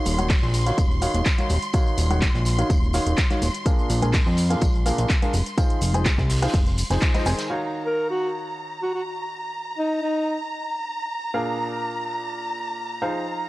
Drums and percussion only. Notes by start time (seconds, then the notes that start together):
0.05 open hi-hat, tambourine, cabasa
0.18 closed hi-hat, tambourine, high conga, cabasa
0.29 kick, snare, clap, closed hi-hat, open hi-hat, tambourine, cabasa
0.43 cabasa
0.54 open hi-hat, tambourine, cabasa
0.66 closed hi-hat, tambourine, cabasa
0.78 kick, closed hi-hat, tambourine, high conga, cabasa
0.91 cabasa
1.01 open hi-hat, tambourine, cabasa
1.14 closed hi-hat, tambourine, cabasa
1.25 kick, snare, clap, closed hi-hat, tambourine, cabasa
1.38 closed hi-hat, tambourine, high conga, cabasa
1.49 open hi-hat, tambourine, cabasa
1.62 closed hi-hat, tambourine, cabasa
1.73 kick, closed hi-hat, tambourine, cabasa
1.86 tambourine, cabasa
1.97 open hi-hat, tambourine, cabasa
2.10 closed hi-hat, tambourine, high conga, cabasa
2.21 kick, snare, clap, closed hi-hat, tambourine, cabasa
2.34 snare, cabasa
2.45 snare, open hi-hat, tambourine, cabasa
2.58 closed hi-hat, tambourine, cabasa
2.70 kick, closed hi-hat, tambourine, high conga, cabasa
2.83 cabasa
2.93 snare, open hi-hat, tambourine, cabasa
3.06 closed hi-hat, tambourine, cabasa
3.17 kick, snare, clap, closed hi-hat, tambourine, cabasa
3.30 snare, closed hi-hat, tambourine, high conga, cabasa
3.42 open hi-hat, tambourine, cabasa
3.54 closed hi-hat, tambourine, cabasa
3.66 kick, closed hi-hat, tambourine, cabasa
3.78 tambourine, cabasa
3.90 open hi-hat, tambourine, cabasa
4.02 closed hi-hat, tambourine, high conga, cabasa
4.13 kick, snare, clap, closed hi-hat, open hi-hat, tambourine, cabasa
4.27 cabasa
4.37 open hi-hat, tambourine, cabasa
4.50 closed hi-hat, tambourine, cabasa
4.61 kick, closed hi-hat, tambourine, high conga, cabasa
4.75 cabasa
4.86 open hi-hat, tambourine, cabasa
4.98 closed hi-hat, tambourine, cabasa
5.09 kick, snare, clap, closed hi-hat, tambourine, cabasa
5.22 closed hi-hat, tambourine, high conga, cabasa
5.33 open hi-hat, tambourine, cabasa
5.46 closed hi-hat, tambourine, cabasa
5.58 kick, closed hi-hat, tambourine, cabasa
5.70 closed hi-hat, tambourine, cabasa
5.81 open hi-hat, tambourine, cabasa
5.93 closed hi-hat, tambourine, high conga, cabasa
6.05 kick, cross-stick, snare, clap, closed hi-hat, tambourine, cabasa
6.18 kick, snare, tambourine, cabasa
6.30 snare, open hi-hat, tambourine, cabasa
6.36 snare, open hi-hat
6.42 cross-stick, snare, closed hi-hat, open hi-hat, tambourine, cabasa
6.48 snare, open hi-hat
6.53 kick, snare, closed hi-hat, open hi-hat, tambourine, high conga, cabasa
6.66 closed hi-hat, tambourine, cabasa
6.78 open hi-hat, tambourine, cabasa
6.89 snare, closed hi-hat, open hi-hat, tambourine, cabasa
7.01 kick, clap, closed hi-hat, tambourine, cabasa
7.14 closed hi-hat, tambourine, high conga, cabasa
7.25 open hi-hat, tambourine, cabasa
7.38 snare, closed hi-hat, tambourine, cabasa